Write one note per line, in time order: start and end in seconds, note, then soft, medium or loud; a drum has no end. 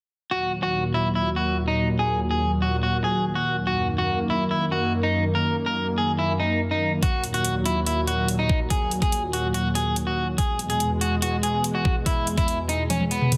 0.31 3.64 D#2 medium
0.31 3.64 A#2 medium
0.31 3.64 F#3 medium
0.31 0.52 F#4 medium
0.63 0.83 F#4 medium
0.94 1.08 E4 medium
1.15 1.29 E4 medium
1.36 1.56 F#4 medium
1.68 1.88 D#4 medium
1.99 2.19 G#4 medium
2.31 2.51 G#4 medium
2.62 2.76 F#4 medium
2.83 2.96 F#4 medium
3.04 3.24 G#4 medium
3.35 3.56 F#4 medium
3.67 6.99 F#2 medium
3.67 6.99 D#3 medium
3.67 6.99 A#3 medium
3.67 3.87 F#4 medium
3.98 4.19 F#4 medium
4.30 4.43 E4 medium
4.51 4.64 E4 medium
4.72 4.92 F#4 medium
5.03 5.24 D#4 medium
5.35 5.55 A#4 medium
5.66 5.86 A#4 medium
5.98 6.11 G#4 medium
6.19 6.32 E4 medium
6.40 6.60 D#4 medium
6.71 6.91 D#4 medium
7.03 10.35 D#2 medium
7.03 10.35 A#2 medium
7.03 10.35 F#3 medium
7.03 7.23 F#4 medium
7.03 kick loud
7.03 closed hi-hat medium
7.24 closed hi-hat soft
7.34 7.54 F#4 medium
7.34 closed hi-hat soft
7.45 closed hi-hat medium
7.65 7.79 E4 medium
7.65 closed hi-hat soft
7.87 8.00 E4 medium
7.87 closed hi-hat medium
8.07 8.28 F#4 medium
8.07 closed hi-hat soft
8.28 closed hi-hat medium
8.39 8.59 D#4 medium
8.49 kick medium
8.70 8.91 G#4 medium
8.70 kick loud
8.70 closed hi-hat medium
8.91 closed hi-hat soft
9.02 9.22 G#4 medium
9.02 kick medium
9.02 closed hi-hat soft
9.12 closed hi-hat medium
9.33 9.47 F#4 medium
9.33 closed hi-hat soft
9.54 9.68 F#4 medium
9.54 closed hi-hat medium
9.75 9.96 G#4 medium
9.75 closed hi-hat soft
9.96 closed hi-hat medium
10.07 10.27 F#4 medium
10.38 13.37 E2 medium
10.38 13.37 B2 medium
10.38 13.37 G#3 medium
10.38 10.58 G#4 medium
10.38 kick loud
10.38 closed hi-hat medium
10.59 closed hi-hat soft
10.70 10.90 G#4 medium
10.70 closed hi-hat soft
10.80 closed hi-hat medium
11.01 11.15 F#4 medium
11.01 closed hi-hat soft
11.22 11.36 F#4 medium
11.22 closed hi-hat medium
11.43 11.63 G#4 medium
11.43 closed hi-hat soft
11.64 closed hi-hat medium
11.75 11.95 F#4 medium
11.85 kick medium
12.06 12.26 E4 medium
12.06 kick loud
12.06 closed hi-hat medium
12.27 closed hi-hat medium
12.38 12.58 E4 medium
12.38 kick medium
12.38 closed hi-hat soft
12.48 closed hi-hat medium
12.69 12.83 D#4 medium
12.69 closed hi-hat soft
12.90 13.04 C#4 medium
12.90 closed hi-hat medium
12.90 high tom medium
13.00 high tom medium
13.11 13.31 B3 medium
13.11 closed hi-hat medium
13.21 mid tom medium
13.32 closed hi-hat medium
13.32 mid tom medium